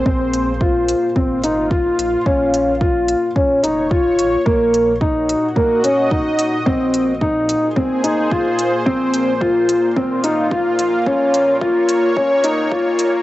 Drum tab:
HH |-x-x-x-x|-x-x-x-x|-x-x-x-x|-x-x-x-x|
BD |o-o-o-o-|o-o-o-o-|o-o-o-o-|o-o-o-o-|

HH |-x-x-x-x|-x-x-x-x|
BD |o-o-o-o-|o-o-o-o-|